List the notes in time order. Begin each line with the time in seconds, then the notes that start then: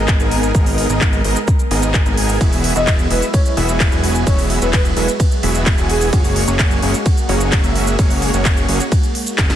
Already playing: G#1 G#3 B3 D#4 G#4 A#4 D#5
0.08 kick, clap, closed hi-hat, shaker
0.20 G#1 B3 D#4 G#4 A#4 G#5, closed hi-hat, shaker
0.31 open hi-hat
0.43 closed hi-hat, shaker
0.55 G#1 B3 D#4 G#4 A#4 D#5, kick, closed hi-hat, shaker
0.66 open hi-hat, shaker
0.78 open hi-hat
0.89 G#1 B3 D#4 G#4 A#4 D#5, closed hi-hat, shaker
1.01 kick, clap, closed hi-hat, shaker
1.13 closed hi-hat, shaker
1.24 G#1 B3 D#4 G#4 A#4 D#5, open hi-hat
1.36 closed hi-hat, shaker
1.48 kick, closed hi-hat, shaker
1.59 closed hi-hat, shaker
1.71 G#1 B3 D#4 G#4 A#4 D#5, open hi-hat
1.83 closed hi-hat, shaker
1.94 kick, clap, closed hi-hat, shaker
2.06 G#1 B3 D#4 G#4 A#4 G#5, closed hi-hat, shaker
2.17 open hi-hat
2.29 open hi-hat, shaker
2.41 E1 F#3 B3 E4 F#4 G#4 E5, kick, closed hi-hat, ride, shaker
2.52 open hi-hat, shaker
2.64 open hi-hat
2.76 E1 B3 E4 F#4 G#4 D#5 E5, shaker
2.87 kick, clap, closed hi-hat, ride, shaker
2.99 closed hi-hat, shaker
3.11 E1 B3 E4 F#4 G#4 B4 E5, open hi-hat
3.22 closed hi-hat, shaker
3.34 C#5, kick, closed hi-hat, ride, shaker
3.45 C#5, closed hi-hat, shaker
3.57 E1 B3 E4 F#4 G#4 E5, open hi-hat
3.69 closed hi-hat, shaker
3.80 kick, clap, closed hi-hat, ride, shaker
3.92 E1 B3 E4 F#4 G#4 G#5, closed hi-hat, shaker
4.04 open hi-hat
4.15 closed hi-hat, shaker
4.27 E1 B3 E4 F#4 G#4 C#5 E5, kick, closed hi-hat, ride, shaker
4.38 open hi-hat, shaker
4.50 open hi-hat
4.62 E1 B3 E4 F#4 G#4 B4 E5, closed hi-hat, shaker
4.73 B4, kick, clap, closed hi-hat, ride, shaker
4.85 closed hi-hat, shaker
4.96 E1 B3 E4 F#4 G#4 B4 E5, open hi-hat
5.08 closed hi-hat, shaker
5.20 kick, closed hi-hat, ride, shaker
5.31 closed hi-hat, shaker
5.43 E1 B3 E4 F#4 G#4 E5, open hi-hat
5.55 closed hi-hat, shaker
5.66 kick, clap, closed hi-hat, ride, shaker
5.78 E1 B3 E4 F#4 G#4 G#5, closed hi-hat, shaker
5.90 G#4, open hi-hat
6.01 open hi-hat, shaker
6.13 F#1 A#3 C#4 F#4 G#4 C#5, kick, closed hi-hat, ride, shaker
6.24 open hi-hat, shaker
6.36 open hi-hat
6.48 F#1 A#3 C#4 F#4 G#4 C#5, closed hi-hat, shaker
6.59 kick, clap, closed hi-hat, ride, shaker
6.71 closed hi-hat, shaker
6.82 F#1 A#3 C#4 F#4 G#4 C#5, open hi-hat
6.94 closed hi-hat, shaker
7.06 kick, closed hi-hat, ride, shaker
7.17 closed hi-hat, shaker
7.29 F#1 A#3 C#4 F#4 G#4 C#5, open hi-hat
7.41 closed hi-hat, shaker
7.52 kick, clap, closed hi-hat, ride, shaker
7.64 F#1 A#3 C#4 F#4 G#4 E5, closed hi-hat, shaker
7.76 open hi-hat
7.87 closed hi-hat, shaker
7.99 F#1 A#3 C#4 F#4 G#4 C#5, kick, closed hi-hat, ride, shaker
8.10 open hi-hat, shaker
8.22 open hi-hat
8.34 F#1 A#3 C#4 F#4 G#4 C#5, closed hi-hat, shaker
8.45 kick, clap, closed hi-hat, ride, shaker
8.57 closed hi-hat, shaker
8.68 F#1 A#3 C#4 F#4 G#4 C#5, open hi-hat
8.80 closed hi-hat, shaker
8.92 kick, closed hi-hat, ride, shaker
9.03 closed hi-hat, shaker
9.15 open hi-hat
9.27 closed hi-hat, shaker
9.38 F#1 A#3 C#4 F#4 G#4 D#5, kick, snare, clap, closed hi-hat, ride, shaker
9.50 snare, closed hi-hat, shaker